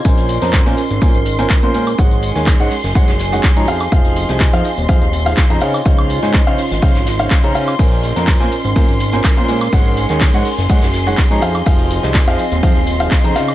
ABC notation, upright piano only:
X:1
M:4/4
L:1/16
Q:1/4=124
K:Db
V:1 name="Upright piano"
[B,,DBca]3 [B,,DBcb]2 [B,,DBca] z2 [B,,DBca] z2 [B,,DBca] z [B,,DBcc'] [A,DBca] z | [A,EAdg]3 [A,EAda]2 [A,EAdg] z2 [A,EAdg] z2 [A,EAdg] z [F,EAdb] [F,EAcf] z | [F,EAcf]3 [F,EAca]2 [F,EAcf] z2 [F,EAcf] z2 [F,EAcf] z [D,EAcb] [D,Ecdf] z | [D,Ecdf]3 [D,Ecda]2 [D,Ecdf] z2 [D,Ecdf] z2 [D,Ecdf] z [D,Ecdb] [Ecdf] z |
[B,,DBca]3 [B,,DBcb]2 [B,,DBca] z2 [B,,DBca] z2 [B,,DBca] z [B,,DBcc'] [A,DBca] z | [A,EAdg]3 [A,EAda]2 [A,EAdg] z2 [A,EAdg] z2 [A,EAdg] z [F,EAdb] [F,EAcf] z | [F,EAcf]3 [F,EAca]2 [F,EAcf] z2 [F,EAcf] z2 [F,EAcf] z [D,EAcb] [D,Ecdf] z |]